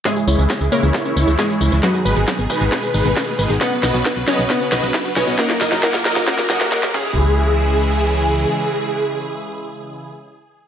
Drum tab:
CC |----------------|----------------|----------------|--------------x-|
HH |xxoxxxoxxxoxxxox|xxoxxxoxxxoxxxox|xxoxxxoxxxoxxxox|xxoxxxoxxooxxx--|
TB |xxxxxxxxxxxxxxxx|xxxxxxxxxxxxxxxx|xxxxxxxxxxxxxxxx|xxxxxxxxxxxxxx--|
SD |o---o---o---o---|o---o---o---o---|o-o-o-o-o-o-o-o-|oooooooooooooo--|
BD |o---o---o---o---|o---o-o-o---o---|o---o---o---o---|o---o-o-o---o-o-|

CC |----------------|----------------|
HH |----------------|----------------|
TB |----------------|----------------|
SD |----------------|----------------|
BD |----------------|----------------|